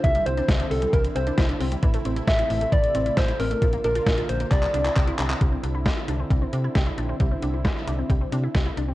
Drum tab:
HH |xxxxxxoxxxxxxxox|xxxxxxoxxxxxxxox|xxxxxxxxxxxxxxxx|x-x-x-x-x-x-x-x-|
CP |----------------|----------------|--------xx-xx-xx|----------------|
SD |----o-------o---|----o-------o---|----o-----------|----o-------o---|
BD |o---o---o---o---|o---o---o---o---|o---o---o---o---|o---o---o---o---|

HH |x-x-x-x-x-x-x-x-|
CP |----------------|
SD |----o-------o---|
BD |o---o---o---o---|